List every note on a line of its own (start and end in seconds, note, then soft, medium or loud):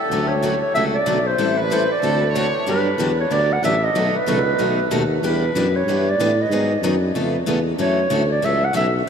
0.00 0.29 A4 medium
0.10 0.61 D2 medium
0.10 0.31 D3 medium
0.10 0.31 F#3 medium
0.10 0.31 A3 medium
0.10 0.31 C#4 medium
0.10 0.32 F#4 medium
0.10 0.32 A4 medium
0.28 0.61 C#5 loud
0.43 0.54 D3 medium
0.43 0.54 F#3 medium
0.43 0.54 A3 medium
0.43 0.54 C#4 medium
0.43 0.55 F#4 medium
0.43 0.55 A4 medium
0.62 0.74 C#5 medium
0.73 1.01 C#2 medium
0.73 0.95 D3 medium
0.73 0.95 F#3 medium
0.73 0.95 A3 medium
0.73 0.96 C#4 medium
0.73 0.96 F#4 medium
0.73 0.96 A4 medium
0.73 0.83 E5 medium
0.94 1.28 D5 medium
1.06 1.34 B1 medium
1.06 1.17 D3 medium
1.06 1.17 F#3 medium
1.06 1.18 A3 medium
1.06 1.18 C#4 medium
1.06 1.18 F#4 medium
1.06 1.18 A4 medium
1.27 1.59 C5 medium
1.38 1.90 A1 medium
1.38 1.59 E3 medium
1.38 1.59 G3 medium
1.38 1.59 C4 medium
1.38 1.59 E4 medium
1.38 1.59 A4 medium
1.57 1.99 B4 medium
1.57 1.74 B4 medium
1.70 1.81 E3 medium
1.70 1.82 G3 medium
1.70 1.82 C4 medium
1.70 1.82 E4 medium
1.70 1.82 A4 medium
1.70 1.91 C5 medium
1.91 2.51 D5 medium
2.02 2.53 D2 medium
2.02 2.22 D3 medium
2.02 2.23 A3 medium
2.02 2.23 C4 medium
2.02 2.23 F#4 medium
2.02 2.23 A4 medium
2.22 2.32 B4 medium
2.32 2.46 D3 medium
2.32 2.46 A3 medium
2.32 2.46 C4 medium
2.32 2.46 F#4 medium
2.32 2.63 C#5 medium
2.37 2.47 A4 medium
2.67 2.97 G2 medium
2.67 2.87 D3 medium
2.67 2.87 F#3 medium
2.67 2.87 B3 medium
2.67 2.87 D4 medium
2.67 2.88 G4 medium
2.67 3.16 B4 medium
2.98 3.29 E2 medium
2.98 3.09 D3 medium
2.98 3.10 F#3 medium
2.98 3.10 B3 medium
2.98 3.10 D4 medium
2.98 3.10 G4 medium
3.20 3.33 C#5 medium
3.30 3.61 D2 medium
3.30 3.51 D3 medium
3.30 3.51 F#3 medium
3.30 3.51 B3 medium
3.30 3.51 D4 medium
3.30 3.51 G4 medium
3.30 3.54 D5 loud
3.53 3.64 F#5 medium
3.62 3.93 A1 medium
3.62 3.74 D3 medium
3.62 3.74 F#3 medium
3.62 3.74 B3 medium
3.62 3.74 D4 medium
3.62 3.74 G4 medium
3.62 3.85 E5 loud
3.84 4.15 D#5 medium
3.94 4.12 B1 medium
3.94 4.15 B2 medium
3.94 4.15 D#3 medium
3.94 4.15 F#3 medium
3.94 4.15 A3 medium
3.94 4.15 B3 medium
3.94 4.15 D#4 medium
3.94 4.15 F#4 medium
3.94 4.16 A4 medium
4.13 4.19 B1 soft
4.13 5.07 B4 loud
4.25 4.57 C#2 medium
4.25 4.37 B2 medium
4.25 4.37 D#3 medium
4.25 4.38 F#3 medium
4.25 4.38 A3 medium
4.25 4.38 B3 medium
4.25 4.38 D#4 medium
4.25 4.38 F#4 loud
4.25 4.38 A4 medium
4.57 4.89 B1 medium
4.57 4.79 B2 medium
4.57 4.79 D#3 medium
4.57 4.79 F#3 medium
4.57 4.79 A3 medium
4.57 4.79 B3 medium
4.57 4.80 D#4 medium
4.57 4.79 F#4 medium
4.57 4.79 A4 medium
4.90 5.21 D#2 medium
4.90 5.02 B2 medium
4.90 5.02 D#3 medium
4.90 5.02 F#3 medium
4.90 5.02 A3 medium
4.90 5.02 B3 medium
4.90 5.02 D#4 loud
4.90 5.02 F#4 medium
4.90 5.02 A4 loud
5.23 5.54 E2 medium
5.23 5.43 E3 medium
5.23 5.43 G3 medium
5.23 5.44 B3 medium
5.23 5.43 D4 medium
5.23 5.44 E4 medium
5.23 5.44 G4 medium
5.23 5.44 B4 medium
5.23 5.78 B4 medium
5.55 5.85 F#2 medium
5.55 5.66 E3 medium
5.55 5.66 G3 medium
5.55 5.66 B3 medium
5.55 5.66 D4 medium
5.55 5.66 E4 medium
5.55 5.67 G4 loud
5.55 5.67 B4 medium
5.76 6.11 C#5 medium
5.86 6.17 G2 medium
5.86 6.07 E3 medium
5.86 6.08 G3 medium
5.86 6.08 B3 medium
5.86 6.08 D4 medium
5.86 6.08 E4 medium
5.86 6.08 B4 medium
5.90 6.09 G4 medium
6.09 6.43 D5 medium
6.18 6.49 A2 medium
6.18 6.30 E3 medium
6.18 6.30 G3 medium
6.18 6.31 B3 medium
6.18 6.30 D4 medium
6.18 6.31 E4 medium
6.18 6.31 G4 medium
6.18 6.31 B4 medium
6.42 6.85 D#5 medium
6.49 6.81 G#2 medium
6.49 6.71 D#3 medium
6.49 6.71 F#3 medium
6.49 6.71 B3 medium
6.49 6.71 D#4 medium
6.49 6.72 G#4 medium
6.82 7.13 F#2 medium
6.82 6.94 D#3 medium
6.82 6.94 F#3 medium
6.82 6.94 B3 medium
6.82 6.94 D#4 medium
6.82 6.94 G#4 medium
7.15 7.46 F2 medium
7.15 7.35 C#3 medium
7.15 7.35 A3 medium
7.15 7.35 B3 medium
7.15 7.36 F4 medium
7.15 7.36 A4 medium
7.15 7.36 B4 medium
7.47 7.77 E2 medium
7.47 7.58 C#3 medium
7.47 7.58 A3 medium
7.47 7.59 B3 medium
7.47 7.59 F4 medium
7.47 7.58 A4 medium
7.47 7.59 B4 medium
7.78 8.09 F#2 medium
7.78 7.99 C#3 medium
7.78 7.99 E3 medium
7.78 7.99 F#3 medium
7.78 7.99 A3 medium
7.78 7.99 C#4 medium
7.78 8.00 E4 medium
7.78 7.99 F#4 medium
7.78 8.00 A4 medium
7.78 8.28 C#5 medium
8.10 8.42 D2 medium
8.10 8.21 C#3 medium
8.10 8.21 E3 medium
8.10 8.22 F#3 medium
8.10 8.21 A3 medium
8.10 8.22 C#4 medium
8.10 8.22 E4 medium
8.10 8.22 F#4 medium
8.10 8.23 A4 medium
8.32 8.46 D5 medium
8.42 8.74 C#2 medium
8.42 8.63 C#3 medium
8.42 8.63 E3 medium
8.42 8.64 F#3 medium
8.42 8.63 A3 medium
8.42 8.64 C#4 medium
8.42 8.64 E4 medium
8.42 8.63 F#4 medium
8.42 8.64 A4 medium
8.42 8.66 E5 medium
8.65 8.75 F#5 medium
8.73 9.06 B1 medium
8.73 8.85 C#3 medium
8.73 8.85 E3 medium
8.73 8.86 F#3 medium
8.73 8.85 A3 medium
8.73 8.86 C#4 medium
8.73 8.87 E4 medium
8.73 8.86 F#4 medium
8.73 8.87 A4 medium
8.73 8.94 E5 medium